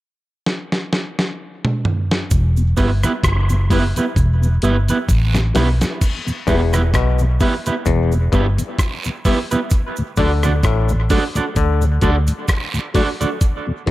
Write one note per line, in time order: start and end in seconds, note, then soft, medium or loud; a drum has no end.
0.46 snare medium
0.72 snare medium
0.93 snare medium
1.19 snare medium
1.65 mid tom medium
1.85 floor tom medium
2.11 snare medium
2.31 2.75 E1 medium
2.31 kick medium
2.31 closed hi-hat medium
2.31 cabasa medium
2.57 2.62 E2 medium
2.57 2.62 B2 medium
2.57 cabasa soft
2.77 3.02 G1 medium
2.77 2.86 G3 medium
2.77 2.89 B3 medium
2.77 2.87 B3 medium
2.77 2.90 E4 medium
2.77 2.87 E4 medium
2.77 2.90 G4 medium
2.77 2.90 B4 medium
2.77 kick loud
2.77 open hi-hat medium
2.77 cabasa medium
3.03 3.09 E2 medium
3.03 3.09 B2 medium
3.03 3.12 B3 medium
3.03 3.12 E4 medium
3.03 3.12 G4 medium
3.03 3.11 B4 medium
3.03 cross-stick medium
3.03 closed hi-hat soft
3.03 cabasa medium
3.24 3.92 F#1 medium
3.24 kick loud
3.24 cross-stick loud
3.24 closed hi-hat medium
3.24 cabasa medium
3.49 3.55 E2 medium
3.49 3.55 B2 medium
3.49 cabasa medium
3.70 3.78 G3 medium
3.70 3.79 B3 medium
3.70 3.83 B3 medium
3.70 3.79 E4 medium
3.70 3.83 E4 medium
3.70 3.83 G4 medium
3.70 3.83 B4 medium
3.70 kick medium
3.70 open hi-hat medium
3.70 cabasa medium
3.96 4.01 E2 medium
3.96 4.01 B2 medium
3.96 4.05 B3 soft
3.96 4.05 E4 medium
3.96 4.04 G4 medium
3.96 4.04 B4 medium
3.96 closed hi-hat soft
3.96 cabasa medium
4.16 4.60 E1 loud
4.16 kick loud
4.16 closed hi-hat medium
4.16 cabasa medium
4.42 4.47 E2 medium
4.42 4.47 B2 medium
4.42 cabasa soft
4.62 4.87 G1 medium
4.62 4.71 G3 medium
4.62 4.71 B3 medium
4.62 4.75 B3 medium
4.62 4.71 E4 medium
4.62 4.75 E4 medium
4.62 4.76 G4 medium
4.62 4.76 B4 medium
4.62 closed hi-hat medium
4.62 cabasa soft
4.88 4.94 E2 medium
4.88 4.94 B2 medium
4.88 4.97 B3 soft
4.88 4.97 E4 medium
4.88 4.97 G4 medium
4.88 4.97 B4 medium
4.88 closed hi-hat soft
4.88 cabasa medium
5.09 5.53 A1 medium
5.09 kick loud
5.09 closed hi-hat medium
5.09 cabasa medium
5.09 long guiro medium
5.34 5.40 E2 medium
5.34 5.39 B2 medium
5.34 snare medium
5.34 cabasa medium
5.54 5.80 B1 medium
5.54 5.63 G3 medium
5.54 5.63 B3 medium
5.54 5.67 B3 medium
5.54 5.63 E4 medium
5.54 5.68 E4 medium
5.54 5.68 G4 medium
5.54 5.68 B4 medium
5.54 snare medium
5.54 open hi-hat medium
5.54 cabasa medium
5.81 5.86 E2 medium
5.81 5.86 B2 medium
5.81 snare medium
5.81 closed hi-hat soft
5.81 cabasa medium
6.01 kick medium
6.01 closed hi-hat medium
6.01 crash medium
6.01 cabasa medium
6.27 6.32 E2 medium
6.27 6.32 B2 medium
6.27 cabasa soft
6.47 6.92 E1 loud
6.47 6.75 E2 medium
6.47 6.56 G3 medium
6.47 6.56 B3 medium
6.47 6.60 B3 medium
6.47 6.56 E4 medium
6.47 6.60 E4 medium
6.47 6.60 G4 medium
6.47 6.61 B4 medium
6.47 kick loud
6.47 open hi-hat medium
6.47 cabasa medium
6.73 6.79 E2 medium
6.73 6.79 B2 medium
6.73 6.82 B3 medium
6.73 6.81 E4 medium
6.73 6.81 G4 medium
6.73 6.81 B4 medium
6.73 cross-stick medium
6.73 closed hi-hat medium
6.73 cabasa medium
6.94 7.38 B1 medium
6.94 7.22 B2 medium
6.94 kick loud
6.94 cross-stick loud
6.94 closed hi-hat medium
6.94 cabasa medium
7.19 7.25 E2 medium
7.19 7.25 B2 medium
7.19 cabasa medium
7.40 7.49 G3 medium
7.40 7.49 B3 medium
7.40 7.53 B3 medium
7.40 7.49 E4 medium
7.40 7.53 E4 medium
7.40 7.53 G4 loud
7.40 7.54 B4 medium
7.40 kick loud
7.40 open hi-hat medium
7.40 cabasa medium
7.66 7.71 E2 medium
7.66 7.71 B2 medium
7.66 7.74 B3 soft
7.66 7.74 E4 medium
7.66 7.74 G4 medium
7.66 7.74 B4 medium
7.66 closed hi-hat medium
7.66 cabasa medium
7.86 8.30 E1 loud
7.86 8.14 E2 medium
7.86 kick loud
7.86 closed hi-hat medium
7.86 cabasa medium
8.12 8.17 E2 medium
8.12 8.18 B2 medium
8.12 cabasa soft
8.32 8.57 G1 medium
8.32 8.48 G2 medium
8.32 8.41 G3 medium
8.32 8.41 B3 medium
8.32 8.45 B3 medium
8.32 8.42 E4 medium
8.32 8.45 E4 medium
8.32 8.46 G4 medium
8.32 8.46 B4 medium
8.32 kick loud
8.32 closed hi-hat medium
8.32 cabasa soft
8.58 8.63 E2 medium
8.58 8.63 B2 medium
8.58 closed hi-hat medium
8.58 cabasa medium
8.79 kick medium
8.79 cross-stick medium
8.79 closed hi-hat medium
8.79 cabasa medium
8.79 long guiro medium
9.04 9.10 E2 medium
9.04 9.10 B2 medium
9.04 cabasa medium
9.25 9.34 G3 medium
9.25 9.37 B3 medium
9.25 9.34 B3 medium
9.25 9.38 E4 medium
9.25 9.34 E4 medium
9.25 9.38 G4 medium
9.25 9.38 B4 medium
9.25 kick medium
9.25 open hi-hat medium
9.25 cabasa medium
9.51 9.56 E2 medium
9.51 9.57 B2 medium
9.51 9.59 B3 medium
9.51 9.59 E4 medium
9.51 9.59 G4 medium
9.51 9.59 B4 medium
9.51 closed hi-hat soft
9.51 cabasa medium
9.70 kick loud
9.70 closed hi-hat medium
9.70 cabasa medium
9.96 10.03 D2 medium
9.96 10.03 A2 medium
9.96 cabasa medium
10.16 10.62 D2 loud
10.16 10.45 D3 medium
10.16 10.27 F#3 medium
10.16 10.27 A3 medium
10.16 10.30 D4 medium
10.16 10.27 D4 medium
10.16 10.30 F#4 medium
10.16 10.31 A4 medium
10.16 10.31 D5 medium
10.16 kick loud
10.16 open hi-hat medium
10.16 cabasa medium
10.43 10.50 D2 medium
10.43 10.49 A2 medium
10.43 10.52 D4 medium
10.43 10.52 F#4 medium
10.43 10.52 A4 medium
10.43 10.51 D5 medium
10.43 cross-stick medium
10.43 closed hi-hat soft
10.43 cabasa medium
10.63 11.07 A1 medium
10.63 10.92 A2 medium
10.63 kick loud
10.63 cross-stick loud
10.63 closed hi-hat loud
10.63 cabasa medium
10.89 10.95 D2 medium
10.89 10.95 A2 medium
10.89 cabasa medium
11.10 11.19 F#3 medium
11.10 11.19 A3 medium
11.10 11.22 D4 medium
11.10 11.19 D4 medium
11.10 11.23 F#4 medium
11.10 11.23 A4 medium
11.10 11.23 D5 medium
11.10 kick medium
11.10 open hi-hat medium
11.10 cabasa medium
11.35 11.41 D2 medium
11.35 11.41 A2 medium
11.35 11.44 D4 soft
11.35 11.44 F#4 medium
11.35 11.44 A4 medium
11.35 11.44 D5 medium
11.35 closed hi-hat soft
11.35 cabasa medium
11.56 12.00 D2 loud
11.56 11.84 D3 medium
11.56 kick loud
11.56 closed hi-hat medium
11.56 cabasa medium
11.81 11.87 D2 medium
11.81 11.87 A2 medium
11.81 cabasa medium
12.01 12.27 D2 medium
12.01 12.18 D3 medium
12.01 12.11 F#3 medium
12.01 12.11 A3 medium
12.01 12.11 D4 medium
12.01 12.15 D4 medium
12.01 12.15 F#4 medium
12.01 12.15 A4 medium
12.01 12.15 D5 medium
12.01 kick loud
12.01 closed hi-hat medium
12.01 cabasa soft
12.27 12.33 D2 medium
12.27 12.33 A2 medium
12.27 closed hi-hat medium
12.27 cabasa medium
12.48 kick medium
12.48 cross-stick medium
12.48 closed hi-hat medium
12.48 cabasa medium
12.48 long guiro medium
12.74 12.79 D2 medium
12.74 12.79 A2 medium
12.74 cabasa medium
12.94 13.03 F#3 medium
12.94 13.03 A3 medium
12.94 13.03 D4 medium
12.94 13.07 D4 medium
12.94 13.08 F#4 medium
12.94 13.08 A4 medium
12.94 13.08 D5 medium
12.94 kick medium
12.94 open hi-hat medium
12.94 cabasa medium
13.21 13.26 D2 medium
13.21 13.26 A2 medium
13.21 13.29 D4 soft
13.21 13.29 F#4 medium
13.21 13.29 A4 medium
13.21 13.28 D5 medium
13.21 closed hi-hat soft
13.21 cabasa medium
13.41 kick loud
13.41 closed hi-hat medium
13.41 cabasa medium
13.67 13.72 E2 medium
13.67 13.72 B2 medium
13.86 13.91 E2 medium
13.86 13.91 G3 medium
13.86 13.91 B3 medium
13.86 13.91 E4 medium
13.86 kick loud
13.86 open hi-hat medium